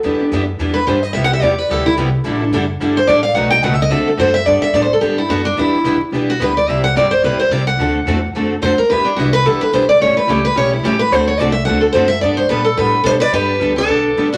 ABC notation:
X:1
M:4/4
L:1/8
Q:"Swing" 1/4=217
K:Em
V:1 name="Steel-string acoustic guitar"
z4 z B c ^d | (3e f e d B A E z2 | z4 z c d =f | f g (3f e ^d e A c e |
[K:G] d e (3d c A G E F D | E3 z2 F B d | e f d c B c d f- | f4 z2 c _B |
B D F B A B c d | ^c B G B c E G B | c ^c d e f A =c e | d c B A B2 A B |
G3 D4 D |]
V:2 name="Steel-string acoustic guitar"
z8 | z8 | z8 | z8 |
[K:G] z8 | z8 | z8 | z8 |
z8 | z8 | z8 | z6 c d |
B3 A4 F |]
V:3 name="Steel-string acoustic guitar"
[E,G,DEB] z [E,G,DEB] z [E,G,DEB] z [E,G,DEB] z | [C,G,B,EG] z [C,G,B,EG] z [C,G,B,EG] z [C,G,B,EG] z | [D,G,DEA] z [D,G,DEA] z [D,G,DEA] z [D,G,DEA] z | [B,,F,A,^DFB] z [B,,F,A,DFB] z [=D,A,CFA] z [D,A,CFA] z |
[K:G] [G,B,DA] z [G,B,DA] z [G,B,DA] z [G,B,DA] z | [E,G,DEB] z [E,G,DEB] z [E,G,DEB] z [E,G,DEB] z | [C,G,CEG] z [C,G,CEG] z [C,G,CEG] z [C,G,CEG] z | [D,A,CFA] z [D,A,CFA] z [D,A,CFA] z [D,A,CFA] z |
[E,G,DEB] z [E,G,DEB] z [E,G,DEB] z [E,G,DEB] z | [E,G,^CEA] z [E,G,CEA] z [E,G,CEA] z [E,G,CEA] z | [D,A,CFA] z [D,A,CFA] z [D,A,CFA] z [D,A,CFA] z | [G,B,DA] z [G,B,DA] z [G,B,DA] z [G,B,DA] z |
[G,B,DA] z [G,B,DA] z [G,B,DA] z [G,B,DA] z |]
V:4 name="Steel-string acoustic guitar"
[E,B,DG] [B,DG] [E,B,DG] z [E,B,DG] z [E,B,DG] z | [C,G,B,EG] [B,EG] [C,G,B,EG] z [C,G,B,EG] z [C,G,B,EG] z | [D,G,DEA] [DEA] [D,G,DEA] z [D,G,DEA] z [D,G,DEA] z | [B,,F,A,^DF] [A,DF] [B,,F,A,DF] z [=D,A,CFA] z [D,A,CFA] z |
[K:G] [G,B,DA] z [G,B,DA] z [G,B,DA] z [G,B,DA] z | [E,B,DG] z [E,B,DG] z [E,B,DG] z [E,B,DG] z | [C,G,CEG] z [C,G,CEG] z [C,G,CEG] z [C,G,CEG] z | [D,A,CFA] z [D,A,CFA] z [D,A,CFA] z [D,A,CFA] z |
[E,B,DG] z [E,B,DG] z [E,B,DG] z [E,B,DG] z | [^C,E,A,^CG] z [C,E,A,CG] z [C,E,A,CG] z [C,E,A,CG] z | [D,A,CFA] z [D,A,CFA] z [D,A,CFA] z [D,A,CFA] z | [G,B,DA] z [G,B,DA] z [G,B,DA] z [G,B,DA] z |
[G,B,DA] z [G,B,DA] z [G,B,DA] z [G,B,DA] z |]
V:5 name="Upright bass" clef=bass
E,, z F,,2 E,,2 G,,2 | C,,2 E,,2 D,,2 C,,2 | A,,,2 F,,,2 G,,,2 A,,,2 | B,,,2 ^C,,2 D,,2 F,,2 |
[K:G] G,, z A,,2 G,,2 F,,2 | E,,2 A,,, z B,,,2 D,,2 | C,,2 G,,,2 B,,, z C,,2 | D,,2 E,,2 F,,2 =F,, z |
E,,2 C,,2 D,, z B,,,2 | A,,, z ^C,,2 B,,,2 A,,,2 | D,,2 C,,2 D,,2 F,,2 | G,,2 _B,,2 A,,2 =B,,2 |
G,,2 D,,2 B,,,2 A,,,2 |]